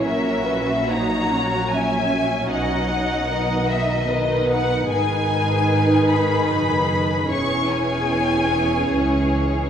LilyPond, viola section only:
\new Staff \with { instrumentName = "Viola section" } { \time 3/4 \key b \major \tempo 4 = 75 << { cis'4 dis'8 cis'4.~ | cis'4 b4 b4 | dis'2. | cis'2. | } \\ { fis4 fis2~ | fis4 dis4 dis4 | dis2. | e2. | } >> }